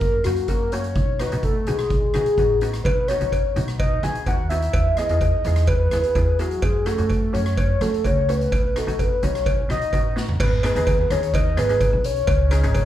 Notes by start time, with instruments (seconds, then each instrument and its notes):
Already playing: upright bass F#2
0.00 soft synth lead A#4, kick, closed hi-hat
0.24 upright bass F#2, steel pan A#3 C#4 F#4, soft synth lead F#4, cross-stick, closed hi-hat
0.36 closed hi-hat
0.48 upright bass F#2, steel pan A#3 C#4 F#4, soft synth lead A#4, kick, closed hi-hat
0.72 steel pan A#3 C#4 F#4, soft synth lead C#5, closed hi-hat
0.84 closed hi-hat
0.95 upright bass B1, kick, closed hi-hat
1.19 steel pan B3 D#4 F#4, soft synth lead B4, cross-stick, closed hi-hat
1.32 upright bass B1, steel pan B3 D#4 F#4, closed hi-hat
1.43 soft synth lead A4, kick, closed hi-hat
1.67 upright bass B1, steel pan B3 D#4 F#4, soft synth lead G#4, closed hi-hat
1.79 cross-stick, closed hi-hat
1.90 kick, closed hi-hat
2.14 upright bass B1, steel pan B3 D#4 F#4, soft synth lead G#4, cross-stick, closed hi-hat
2.26 closed hi-hat
2.38 upright bass A1, steel pan B3 D#4 F#4, kick, closed hi-hat
2.61 steel pan B3 D#4 F#4, closed hi-hat
2.73 cross-stick, closed hi-hat
2.84 upright bass B1, soft synth lead B4, kick, closed hi-hat, cowbell
3.08 steel pan B3 D#4 F#4, soft synth lead C#5, cross-stick, closed hi-hat
3.21 upright bass B1, steel pan B3 D#4 F#4, closed hi-hat
3.32 kick, closed hi-hat, cowbell
3.56 upright bass B1, steel pan B3 D#4 F#4, closed hi-hat
3.68 cross-stick, closed hi-hat
3.79 soft synth lead D#5, kick, closed hi-hat, cowbell
4.03 upright bass B1, steel pan B3 D#4 F#4, soft synth lead G#5, cross-stick, closed hi-hat
4.15 closed hi-hat
4.26 upright bass D#2, steel pan B3 D#4 F#4, soft synth lead F#5, kick, closed hi-hat, cowbell
4.49 steel pan B3 D#4 F#4, soft synth lead E5, closed hi-hat
4.62 closed hi-hat
4.73 upright bass E2, kick, closed hi-hat, cowbell
4.97 steel pan B3 E4 G#4, soft synth lead D#5, cross-stick, closed hi-hat
5.09 upright bass E2, steel pan B3 E4 G#4, closed hi-hat
5.21 kick, closed hi-hat, cowbell
5.44 upright bass E2, steel pan B3 E4 G#4, closed hi-hat
5.56 cross-stick, closed hi-hat
5.67 soft synth lead B4, kick, closed hi-hat, cowbell
5.77 soft synth lead B4
5.84 soft synth lead B4
5.90 upright bass E2, steel pan B3 E4 G#4, soft synth lead B4, cross-stick, closed hi-hat
6.00 soft synth lead B4, closed hi-hat
6.07 soft synth lead B4
6.13 upright bass E2, steel pan B3 E4 G#4, soft synth lead B4, kick, closed hi-hat, cowbell
6.21 soft synth lead B4
6.39 steel pan B3 E4 G#4, soft synth lead F#4, closed hi-hat
6.51 closed hi-hat
6.62 upright bass F#2, soft synth lead G#4, kick, closed hi-hat, cowbell
6.86 steel pan A3 C#4 F#4, soft synth lead A4, cross-stick, closed hi-hat
6.98 upright bass F#2, steel pan A3 C#4 F#4, closed hi-hat
7.10 kick, closed hi-hat, cowbell
7.33 upright bass F#2, steel pan A3 C#4 F#4, soft synth lead C#5, closed hi-hat
7.46 cross-stick, closed hi-hat
7.57 soft synth lead C#5, kick, closed hi-hat, cowbell
7.81 upright bass F#2, steel pan A3 C#4 F#4, soft synth lead A4, cross-stick, closed hi-hat
7.94 closed hi-hat
8.04 upright bass C#2, steel pan A3 C#4 F#4, soft synth lead C#5, kick, closed hi-hat, cowbell
8.29 steel pan A3 C#4 F#4, soft synth lead B4, closed hi-hat
8.41 closed hi-hat
8.52 upright bass B1, kick, closed hi-hat, cowbell
8.76 steel pan B3 D#4 F#4, soft synth lead A4, cross-stick, closed hi-hat
8.87 upright bass B1, steel pan B3 D#4 F#4, closed hi-hat
8.99 soft synth lead B4, kick, closed hi-hat, cowbell
9.23 upright bass B1, steel pan B3 D#4 F#4, soft synth lead C#5, closed hi-hat
9.35 cross-stick, closed hi-hat
9.46 kick, closed hi-hat, cowbell
9.69 upright bass B1, steel pan B3 D#4 F#4, soft synth lead D#5, cross-stick, closed hi-hat
9.81 closed hi-hat
9.93 upright bass A1, steel pan B3 D#4 F#4, kick, closed hi-hat, cowbell
10.16 steel pan B3 D#4 F#4, snare
10.29 floor tom
10.40 upright bass G#1, soft synth lead B4, kick, crash, cowbell
10.63 steel pan B3 D#4 G#4, soft synth lead B4, cross-stick, closed hi-hat, cowbell
10.75 upright bass D#2, steel pan B3 D#4 G#4, closed hi-hat
10.87 kick, closed hi-hat, cowbell
11.10 upright bass D#2, steel pan B3 D#4 G#4, soft synth lead C#5, cross-stick, closed hi-hat
11.23 closed hi-hat
11.34 soft synth lead D#5, kick, closed hi-hat, cowbell
11.57 upright bass G#1, steel pan B3 D#4 G#4, soft synth lead B4, cross-stick, closed hi-hat
11.69 steel pan B3 D#4 G#4, closed hi-hat
11.80 kick, closed hi-hat, cowbell
11.93 upright bass B1
12.04 soft synth lead C#5, closed hi-hat
12.16 closed hi-hat
12.27 upright bass C#2, kick, closed hi-hat, cowbell
12.51 steel pan C#4 D#4 G#4, cross-stick, closed hi-hat, cowbell
12.63 upright bass G#1, steel pan C#4 D#4 G#4, closed hi-hat
12.74 kick, closed hi-hat, cowbell